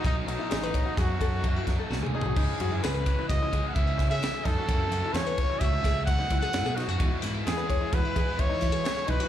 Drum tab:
CC |------------------------------|x-----------------------------|------------------------------|------------------------------|
RD |x--x--x--x--x--x--x--x--------|---x--x--x--x--x--x--x--x--x--|x--x--x--x--x--x--x--x--x--x--|x--x--x--x--x--x--x--x--x--x--|
SD |------o-----o--------o--o-----|------o-----o--------o--o--o--|------o--------o--------o--o--|---o--o-----------------o-----|
T2 |--------------------------o---|------------------------------|------------------------------|------------------------------|
FT |----------------------------o-|------------------------------|------------------------------|------------------------------|
BD |o--------o--o--o--o--o--------|o--------o--o--o--o--o-----o--|o--------o--o--o--o--o--------|o--------o--o--o--o--o-----o--|